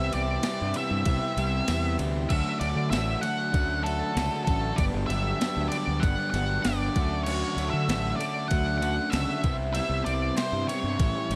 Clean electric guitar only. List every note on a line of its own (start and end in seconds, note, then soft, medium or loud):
0.00 0.12 C3 loud
0.00 0.13 G3 loud
0.00 0.13 B3 loud
0.00 0.14 E4 loud
0.13 0.44 C3 medium
0.13 0.43 G3 medium
0.13 0.44 B3 medium
0.13 0.45 E4 medium
0.44 0.75 C3 loud
0.44 0.75 G3 loud
0.44 0.76 B3 loud
0.44 0.76 E4 loud
0.76 1.05 C3 medium
0.76 1.05 G3 medium
0.76 1.06 B3 medium
0.76 1.06 E4 medium
1.06 1.36 C3 medium
1.06 1.37 G3 medium
1.06 1.38 B3 medium
1.06 1.38 E4 medium
1.37 1.68 C3 loud
1.37 1.68 G3 medium
1.37 1.68 B3 loud
1.37 1.68 E4 loud
1.69 1.97 C3 medium
1.69 1.98 G3 medium
1.69 1.99 B3 loud
1.69 1.99 E4 loud
1.98 2.28 C3 medium
1.98 2.28 G3 medium
1.98 2.29 B3 medium
1.98 2.29 E4 medium
2.30 2.59 D3 medium
2.30 2.60 F#3 loud
2.30 2.60 A3 loud
2.30 2.61 C#4 loud
2.60 2.90 D3 medium
2.60 2.91 F#3 medium
2.60 2.91 A3 loud
2.60 2.92 C#4 loud
2.91 3.20 D3 loud
2.91 3.22 F#3 loud
2.91 3.21 A3 loud
2.91 3.22 C#4 loud
3.21 3.51 D3 loud
3.21 3.52 F#3 medium
3.21 3.52 A3 loud
3.21 3.52 C#4 medium
3.52 3.82 D3 medium
3.52 3.83 F#3 medium
3.52 3.82 A3 medium
3.52 3.82 C#4 loud
3.83 4.12 D3 loud
3.83 4.13 F#3 loud
3.83 4.13 A3 loud
3.83 4.13 C#4 loud
4.13 4.45 D3 medium
4.13 4.46 F#3 medium
4.13 4.46 A3 loud
4.13 4.46 C#4 loud
4.46 4.76 D3 medium
4.46 4.77 F#3 medium
4.46 4.76 A3 medium
4.46 4.77 C#4 medium
4.77 5.07 G2 medium
4.77 5.08 D3 loud
4.77 5.08 F#3 loud
4.77 5.08 B3 loud
4.77 5.09 D4 loud
5.08 5.38 G2 medium
5.08 5.38 D3 loud
5.08 5.40 F#3 loud
5.08 5.39 B3 loud
5.08 5.41 D4 loud
5.39 5.70 G2 loud
5.39 5.71 D3 loud
5.39 5.71 F#3 loud
5.39 5.71 B3 loud
5.39 5.72 D4 loud
5.71 6.01 G2 medium
5.71 6.02 D3 loud
5.71 6.01 F#3 medium
5.71 6.02 B3 loud
5.71 6.02 D4 medium
6.02 6.32 G2 medium
6.02 6.32 D3 medium
6.02 6.33 F#3 medium
6.02 6.33 B3 loud
6.02 6.34 D4 loud
6.33 6.62 G2 loud
6.33 6.64 D3 loud
6.33 6.63 F#3 loud
6.33 6.64 B3 loud
6.33 6.64 D4 loud
6.63 6.93 G2 loud
6.63 6.93 D3 loud
6.63 6.94 F#3 loud
6.63 6.94 B3 loud
6.63 6.94 D4 loud
6.95 7.25 D3 medium
6.95 7.25 F#3 medium
6.95 7.26 A3 loud
6.95 7.26 C#4 loud
7.26 7.55 D3 loud
7.26 7.56 F#3 medium
7.26 7.56 A3 loud
7.26 7.57 C#4 loud
7.57 7.88 D3 medium
7.57 7.88 F#3 medium
7.57 7.88 A3 loud
7.57 7.89 C#4 medium
7.89 8.17 D3 loud
7.89 8.18 F#3 loud
7.89 8.18 A3 loud
7.89 8.19 C#4 loud
8.19 8.49 D3 loud
8.19 8.50 F#3 medium
8.19 8.51 A3 loud
8.19 8.51 C#4 loud
8.50 8.80 D3 medium
8.50 8.80 F#3 loud
8.50 8.80 A3 medium
8.50 8.81 C#4 loud
8.81 9.11 D3 loud
8.81 9.11 F#3 loud
8.81 9.12 A3 loud
8.81 9.12 C#4 loud
9.12 9.42 D3 loud
9.12 9.42 F#3 loud
9.12 9.42 A3 loud
9.12 9.43 C#4 loud
9.44 9.74 C3 medium
9.44 9.74 G3 loud
9.44 9.75 B3 loud
9.44 9.75 E4 loud
9.75 10.05 C3 medium
9.75 10.06 G3 loud
9.75 10.06 B3 loud
9.75 10.06 E4 loud
10.06 10.36 C3 medium
10.06 10.36 G3 medium
10.06 10.36 B3 medium
10.06 10.36 E4 medium
10.37 10.68 C3 loud
10.37 10.69 G3 loud
10.37 10.68 B3 loud
10.37 10.69 E4 loud
10.69 10.98 C3 medium
10.69 10.98 G3 medium
10.69 10.98 B3 loud
10.69 10.99 E4 loud
10.99 11.30 A2 loud
10.99 11.30 E3 medium
10.99 11.31 G3 loud
10.99 11.31 C#4 loud
10.99 11.31 E4 loud
11.31 11.36 A2 loud
11.31 11.36 E3 loud
11.31 11.36 G3 loud
11.31 11.36 C#4 loud
11.31 11.36 E4 medium